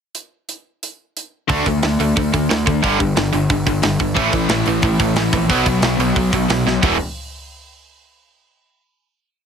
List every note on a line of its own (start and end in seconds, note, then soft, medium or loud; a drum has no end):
0.15 closed hi-hat medium
0.49 closed hi-hat soft
0.83 closed hi-hat medium
1.17 closed hi-hat medium
1.48 1.62 D2 medium
1.48 1.64 D3 medium
1.48 1.64 A3 medium
1.48 1.65 D4 medium
1.48 kick loud
1.48 open hi-hat medium
1.66 1.79 D2 medium
1.66 1.81 D3 medium
1.66 1.81 A3 medium
1.66 kick medium
1.66 open hi-hat medium
1.83 1.95 D2 medium
1.83 1.97 D3 medium
1.83 1.98 A3 medium
1.83 snare medium
1.83 open hi-hat medium
1.99 2.12 D2 medium
1.99 2.14 D3 medium
1.99 2.14 A3 medium
1.99 open hi-hat medium
2.16 2.29 D2 medium
2.16 2.31 D3 medium
2.16 2.31 A3 medium
2.16 kick loud
2.16 open hi-hat medium
2.33 2.46 D2 medium
2.33 2.47 D3 medium
2.33 2.48 A3 medium
2.33 kick medium
2.33 open hi-hat medium
2.50 2.63 D2 medium
2.50 2.65 D3 medium
2.50 2.65 A3 medium
2.50 snare loud
2.50 open hi-hat medium
2.66 2.79 D2 medium
2.66 2.81 D3 medium
2.66 2.81 A3 medium
2.66 kick medium
2.66 open hi-hat medium
2.82 2.96 G1 loud
2.82 2.98 G2 medium
2.82 2.98 D3 medium
2.82 2.99 G3 medium
2.82 kick loud
2.82 open hi-hat medium
2.99 3.12 G1 medium
2.99 3.14 G2 medium
2.99 3.14 D3 medium
2.99 kick medium
2.99 open hi-hat medium
3.16 3.29 G1 medium
3.16 3.31 G2 medium
3.16 3.31 D3 medium
3.16 snare loud
3.16 open hi-hat medium
3.33 3.45 G1 medium
3.33 3.48 G2 medium
3.33 3.48 D3 medium
3.33 open hi-hat medium
3.50 3.62 G1 medium
3.50 3.65 G2 medium
3.50 3.65 D3 medium
3.50 kick loud
3.50 open hi-hat medium
3.67 3.79 G1 medium
3.67 3.81 G2 medium
3.67 3.82 D3 medium
3.67 kick medium
3.67 open hi-hat medium
3.82 3.95 G1 medium
3.82 3.97 G2 medium
3.82 3.98 D3 medium
3.82 snare loud
3.82 open hi-hat medium
3.99 4.12 G1 medium
3.99 4.14 G2 medium
3.99 4.14 D3 medium
3.99 kick medium
3.99 open hi-hat medium
4.14 4.28 A1 loud
4.14 4.30 A2 medium
4.14 4.31 E3 medium
4.14 4.31 A3 medium
4.14 kick loud
4.14 open hi-hat medium
4.31 4.46 A1 medium
4.31 4.47 A2 medium
4.31 4.47 E3 medium
4.31 kick medium
4.31 open hi-hat medium
4.49 4.61 A1 medium
4.49 4.64 A2 medium
4.49 4.64 E3 medium
4.49 snare loud
4.49 open hi-hat medium
4.66 4.79 A1 medium
4.66 4.81 A2 medium
4.66 4.81 E3 medium
4.66 open hi-hat medium
4.82 4.95 A1 loud
4.82 4.97 A2 medium
4.82 4.98 E3 medium
4.82 kick loud
4.82 open hi-hat medium
4.99 5.12 A1 medium
4.99 5.14 A2 medium
4.99 5.14 E3 medium
4.99 kick medium
4.99 open hi-hat medium
5.15 5.27 A1 medium
5.15 5.31 A2 medium
5.15 5.31 E3 medium
5.15 snare medium
5.15 open hi-hat medium
5.33 5.45 A#1 medium
5.33 5.48 A2 medium
5.33 5.48 E3 medium
5.33 kick loud
5.33 open hi-hat medium
5.50 5.62 B1 loud
5.50 5.64 B2 medium
5.50 5.65 F#3 medium
5.50 5.66 B3 loud
5.50 kick loud
5.50 open hi-hat medium
5.65 5.79 B1 medium
5.65 5.81 B2 medium
5.65 5.81 F#3 medium
5.65 kick medium
5.65 open hi-hat medium
5.82 5.94 B1 medium
5.82 5.98 B2 medium
5.82 5.98 F#3 medium
5.82 snare loud
5.82 open hi-hat medium
5.98 6.11 B1 medium
5.98 6.14 B2 medium
5.98 6.15 F#3 medium
5.98 open hi-hat medium
6.15 6.29 B1 medium
6.15 6.31 B2 medium
6.15 6.31 F#3 medium
6.15 kick loud
6.15 open hi-hat medium
6.32 6.45 B1 medium
6.32 6.47 B2 medium
6.32 6.47 F#3 medium
6.32 kick medium
6.32 open hi-hat medium
6.49 6.61 B1 medium
6.49 6.64 B2 medium
6.49 6.64 F#3 medium
6.49 snare loud
6.49 open hi-hat medium
6.66 6.78 B1 medium
6.66 6.81 B2 medium
6.66 6.81 F#3 medium
6.66 snare medium
6.83 6.98 E1 medium
6.83 6.96 E2 medium
6.83 6.96 B2 medium
6.83 6.97 E3 loud
6.83 kick medium
6.83 floor tom medium
6.83 open hi-hat medium